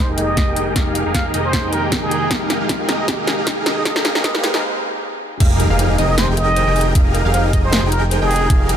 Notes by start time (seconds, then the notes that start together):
Already playing: D#3 G#3 A#3 D#4 G4 G5, riser
0.09 F1 D#4 G4 G#4 A#4 G5
0.16 G#3 A#3 D#4 D#5, closed hi-hat
0.20 G4
0.37 kick, snare, closed hi-hat
0.48 F1 D#4 G4 G#4 A#4 G5
0.56 closed hi-hat
0.74 F1 G#3 A#3 D#4 G4 G#4 A#4 F5, kick, snare, closed hi-hat
0.95 closed hi-hat
1.06 F1 D#4 G4 G#4 A#4 F5
1.15 F5, kick, snare, closed hi-hat
1.34 F1 D#4 G4 G#4 A#4 D#5, closed hi-hat
1.44 C5
1.53 kick, snare, closed hi-hat
1.64 F1 D#4 G4 G#4 A#4 G5
1.73 A#4, closed hi-hat
1.81 G#3 A#3 D#4 G4
1.92 kick, snare, closed hi-hat
2.02 F1 D#4 G4 G#4 A#4 G5
2.11 closed hi-hat
2.29 F1 G#3 A#3 C4 D#4 G4 G#4 A#4 F5, kick, snare, closed hi-hat
2.33 G4
2.50 snare, closed hi-hat
2.60 F1 D#4 G4 G#4 A#4 F5
2.69 kick, snare, closed hi-hat
2.89 F1 D#4 G4 G#4 A#4 D#5, snare, closed hi-hat
2.99 D#5
3.06 F1 G#3 A#3 D#4 G4 G#4 A#4 F5, kick, snare, closed hi-hat
3.10 G4
3.27 snare, closed hi-hat
3.38 F1 D#4 G4 G#4 A#4 F5
3.47 kick, snare, closed hi-hat
3.66 F1 D#4 G4 G#4 A#4 D#5, snare, closed hi-hat
3.77 D#5
3.83 F1 G#3 A#3 D#4 G4 G#4 A#4 D#5 F5, kick, snare, closed hi-hat
3.96 snare
4.05 snare, closed hi-hat
4.15 F1 D#4 G4 G#4 A#4 F5, snare
4.22 F1 G#3 A#3 D#4 G4 G#4 A#4 D#5 F5, kick, snare, closed hi-hat
4.26 G4
4.35 snare
4.44 snare, closed hi-hat
4.54 F1 D#4 G4 G#4 A#4 F5, snare
5.40 F1 D#4 G4 G#4 A#4 F5, kick, closed hi-hat, crash, impact
5.51 G4
5.60 A#4, closed hi-hat
5.70 F1 D#4 G4 G#4 A#4 F5
5.79 C5, closed hi-hat
5.89 D#5
5.98 F1 D#4 G4 G#4 A#4 D#5, closed hi-hat
6.09 F4 D#5
6.18 D#4 C5, snare, closed hi-hat
6.28 F1 D#4 G4 G#4 A#4 G5
6.37 A#4 D#5, closed hi-hat
6.48 G4
6.57 C5, closed hi-hat
6.67 F1 D#4 G4 G#4 A#4 D#5 G5
6.76 G#4, open hi-hat
6.81 closed hi-hat
6.86 F4
6.95 F1 D#4 G4 G#4 A#4 F5, kick, closed hi-hat
7.06 G4
7.15 A#4, closed hi-hat
7.25 F1 D#4 G4 G#4 A#4 F5
7.34 C5 F5, closed hi-hat
7.45 D#5
7.53 D#4 G4 G#4 A#4 D#5, kick, closed hi-hat
7.64 F4 C5
7.73 snare, closed hi-hat
7.83 F1 D#4 G4 G#4 A#4 G5
7.92 A#4, closed hi-hat
8.03 G4
8.11 C5, closed hi-hat
8.22 F1 D#4 G4 G#4 A#4 D#5 G5
8.31 G#4, open hi-hat
8.36 closed hi-hat
8.41 F4
8.50 D#4 G4 G#4 A#4 F5, kick, closed hi-hat
8.61 G4
8.69 A#4, closed hi-hat